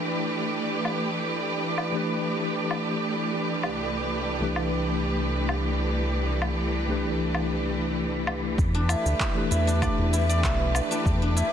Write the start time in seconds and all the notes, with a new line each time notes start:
Already playing: E3 A3 D4 E4 G4 B4 D5
0.85 low woodblock
1.78 low woodblock
1.92 E3 A3 D4 G4
1.96 B4
2.71 low woodblock
3.63 C2 E3, low woodblock
4.40 C2 E3 A3 D4 G4
4.44 B4
4.56 low woodblock
5.49 low woodblock
6.42 low woodblock
6.87 C2 E3 A3 D4 G4
6.91 B4
7.35 low woodblock
8.27 low woodblock
8.58 E2, kick, shaker
8.72 D4 G4
8.79 A3 B4
8.87 D4 E4, low woodblock, shaker
9.06 D2, shaker
9.20 G4, kick, clap, shaker
9.34 E3 A3 D4 G4 B4
9.51 E2 E4, shaker
9.67 D4, shaker
9.82 D5, kick, low woodblock, shaker
9.99 E2
10.13 E4, shaker
10.29 D5, shaker
10.44 B1 E4, kick, clap, shaker
10.75 low woodblock, shaker
10.91 D4, shaker
11.06 E2, kick, shaker
11.22 D4
11.37 E4, shaker